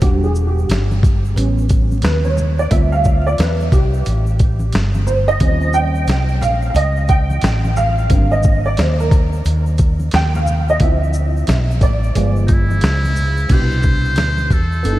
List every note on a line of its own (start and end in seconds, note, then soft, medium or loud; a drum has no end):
0.01 0.66 E1 loud
0.01 0.99 G3 soft
0.01 0.99 D4 medium
0.01 0.99 F#4 medium
0.01 0.23 G4 medium
0.01 kick loud
0.01 closed hi-hat medium
0.01 shaker medium
0.23 0.47 G#4 medium
0.23 shaker soft
0.35 shaker medium
0.35 shaker soft
0.47 1.44 G4 medium
0.58 shaker soft
0.69 1.33 G1 medium
0.69 snare loud
0.69 closed hi-hat medium
0.69 shaker medium
0.91 high conga medium
0.91 shaker soft
1.03 kick loud
1.03 closed hi-hat soft
1.03 high conga soft
1.03 low conga medium
1.03 shaker soft
1.25 shaker soft
1.35 2.00 A1 medium
1.35 2.33 G3 medium
1.35 2.33 B3 medium
1.35 2.34 C#4 medium
1.35 closed hi-hat medium
1.35 shaker medium
1.58 shaker soft
1.69 kick medium
1.69 closed hi-hat medium
1.69 high conga soft
1.69 shaker medium
1.69 shaker soft
1.92 high conga medium
1.92 shaker soft
2.02 2.68 D#2 medium
2.02 2.26 B4 medium
2.02 snare loud
2.02 closed hi-hat medium
2.02 shaker medium
2.24 2.60 C#5 medium
2.24 high conga medium
2.24 shaker soft
2.37 low conga medium
2.37 shaker soft
2.37 shaker medium
2.59 2.72 D5 medium
2.59 shaker medium
2.70 3.35 D2 loud
2.70 3.68 G3 medium
2.70 3.68 C4 soft
2.70 3.68 F4 medium
2.70 3.68 E5 loud
2.70 kick loud
2.70 closed hi-hat loud
2.70 shaker medium
2.92 3.27 F5 loud
2.92 shaker soft
3.04 kick medium
3.04 shaker medium
3.04 shaker soft
3.27 3.38 D5 loud
3.27 shaker soft
3.38 3.71 E2 loud
3.38 3.74 B4 medium
3.38 snare loud
3.38 closed hi-hat medium
3.38 shaker medium
3.60 shaker soft
3.72 4.04 C2 medium
3.72 4.70 G4 medium
3.72 kick loud
3.72 closed hi-hat soft
3.72 high conga soft
3.72 low conga medium
3.72 shaker soft
3.94 shaker medium
4.05 4.71 A1 medium
4.05 closed hi-hat medium
4.05 shaker medium
4.26 shaker soft
4.39 kick loud
4.39 closed hi-hat medium
4.39 high conga soft
4.39 shaker soft
4.39 shaker medium
4.59 high conga medium
4.59 shaker soft
4.72 5.38 G1 medium
4.72 snare loud
4.72 closed hi-hat medium
4.72 shaker medium
4.94 high conga medium
4.94 shaker medium
5.06 5.29 C5 loud
5.06 low conga medium
5.06 shaker soft
5.06 shaker medium
5.28 5.71 D#5 loud
5.28 shaker medium
5.40 6.05 D#2 loud
5.40 8.06 F3 medium
5.40 8.07 G3 soft
5.40 8.07 C4 soft
5.40 8.07 C#4 medium
5.40 kick loud
5.40 closed hi-hat loud
5.40 shaker medium
5.61 shaker soft
5.73 6.44 G5 loud
5.73 shaker soft
5.73 shaker medium
5.95 shaker soft
6.07 6.42 C2 medium
6.07 snare loud
6.07 closed hi-hat medium
6.07 shaker medium
6.28 shaker soft
6.41 6.74 A#1 medium
6.41 6.69 F5 loud
6.41 closed hi-hat medium
6.41 high conga soft
6.41 low conga medium
6.41 shaker soft
6.41 shaker medium
6.62 shaker soft
6.70 6.76 F5 medium
6.74 7.39 C#2 loud
6.74 7.11 D#5 loud
6.74 closed hi-hat medium
6.74 shaker medium
6.96 shaker soft
7.08 7.73 G5 loud
7.08 kick medium
7.08 closed hi-hat medium
7.08 high conga soft
7.08 shaker soft
7.08 shaker medium
7.30 high conga medium
7.30 shaker soft
7.42 8.07 A1 medium
7.42 snare loud
7.42 closed hi-hat medium
7.42 shaker medium
7.64 high conga medium
7.64 shaker medium
7.76 8.28 F5 loud
7.76 low conga medium
7.76 shaker medium
7.76 shaker soft
7.98 shaker medium
8.09 8.75 G#1 medium
8.09 8.59 D3 medium
8.09 8.58 G3 medium
8.09 8.59 A#3 soft
8.09 8.59 C4 soft
8.09 kick loud
8.09 closed hi-hat medium
8.09 shaker medium
8.31 8.63 D#5 medium
8.31 shaker soft
8.43 kick medium
8.43 shaker medium
8.43 shaker soft
8.65 8.78 D5 loud
8.65 shaker soft
8.77 9.42 D#2 medium
8.77 9.01 C5 medium
8.77 snare loud
8.77 closed hi-hat medium
8.77 shaker medium
9.00 9.63 A#4 medium
9.00 shaker soft
9.11 kick loud
9.11 closed hi-hat soft
9.11 high conga soft
9.11 low conga medium
9.11 shaker soft
9.33 shaker soft
9.45 10.10 D#2 medium
9.45 closed hi-hat medium
9.45 shaker medium
9.66 shaker soft
9.78 kick medium
9.78 closed hi-hat medium
9.78 high conga soft
9.78 shaker medium
9.78 shaker soft
9.99 high conga medium
9.99 shaker soft
10.11 10.77 D#2 medium
10.11 10.34 G5 loud
10.11 snare loud
10.11 closed hi-hat medium
10.11 shaker medium
10.35 10.70 F5 medium
10.35 high conga medium
10.35 shaker medium
10.46 low conga medium
10.46 shaker soft
10.46 shaker medium
10.69 10.75 D#5 loud
10.69 shaker medium
10.80 11.44 D2 loud
10.80 12.11 F3 medium
10.80 12.12 C4 soft
10.80 12.12 E4 medium
10.80 11.86 E5 loud
10.80 kick loud
10.80 closed hi-hat loud
10.80 shaker medium
11.04 shaker soft
11.13 shaker medium
11.15 shaker soft
11.37 shaker soft
11.47 11.80 B1 medium
11.47 snare loud
11.47 closed hi-hat medium
11.47 low conga medium
11.47 shaker medium
11.71 shaker medium
11.81 12.13 A1 medium
11.81 12.45 D5 medium
11.81 kick loud
11.81 closed hi-hat soft
11.81 high conga soft
11.81 low conga medium
11.81 shaker soft
11.83 shaker soft
12.04 shaker soft
12.15 12.79 G1 loud
12.15 13.46 F3 medium
12.15 13.46 G#3 medium
12.15 13.46 B3 medium
12.15 closed hi-hat medium
12.15 shaker medium
12.36 shaker soft
12.47 12.55 D#4 medium
12.47 kick medium
12.47 closed hi-hat medium
12.47 high conga soft
12.47 shaker medium
12.47 shaker soft
12.53 13.54 E4 loud
12.71 high conga medium
12.71 shaker soft
12.81 13.47 C#2 medium
12.81 snare loud
12.81 closed hi-hat medium
12.81 shaker medium
13.05 high conga medium
13.05 shaker medium
13.16 low conga medium
13.16 shaker soft
13.16 shaker medium
13.37 shaker medium
13.48 14.18 C2 medium
13.48 14.57 B2 medium
13.48 14.57 D4 medium
13.48 14.58 E4 medium
13.48 14.58 G4 medium
13.48 kick loud
13.48 closed hi-hat medium
13.48 crash medium
13.48 shaker medium
13.53 14.54 C5 loud
13.71 shaker soft
13.83 kick medium
13.83 shaker medium
13.83 shaker soft
14.05 shaker soft
14.16 14.50 D2 medium
14.16 snare loud
14.16 closed hi-hat medium
14.16 shaker medium
14.38 high conga medium
14.38 shaker soft
14.50 14.83 E2 medium
14.50 14.99 A4 medium
14.50 kick medium
14.50 closed hi-hat soft
14.50 high conga soft
14.50 low conga medium
14.50 shaker soft
14.72 shaker soft
14.83 14.99 G1 medium
14.83 14.99 B3 medium
14.83 14.99 D4 medium
14.83 14.93 D#4 medium
14.83 14.99 A4 medium
14.83 closed hi-hat medium
14.83 shaker medium
14.91 14.99 E4 medium